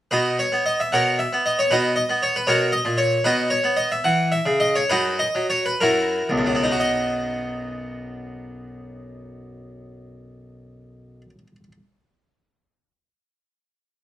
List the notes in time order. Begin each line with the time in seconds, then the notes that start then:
0.11 B2 D#4 F#4 B4
0.39 C#5
0.52 B3
0.66 D#5
0.80 E5
0.92 B2 A#4 C#5 F#5
1.19 E5
1.33 B3
1.46 D#5
1.59 C#5
1.71 B2 D#4 F#4 B4
1.96 D#5
2.09 B3
2.23 C#5
2.36 B4
2.47 B2 F#4 A#4 C#5
2.72 D#5
2.85 A#2
2.98 C#5
3.24 B2 D#4 F#4 B4
3.50 C#5
3.64 B3
3.77 D#5
3.92 E5
4.04 E3 F#5
4.32 E5
4.46 C#3
4.60 D#5
4.76 C#5
4.90 F#2 D#4 F#4 B4
5.19 D#5
5.35 F#3
5.50 C#5
5.66 B4
5.81 F#2 E4 F#4 A#4
6.29 B1 C#2
6.38 F#2
6.46 F#3
6.55 B3
6.63 D#4
6.71 F#4
6.80 D#5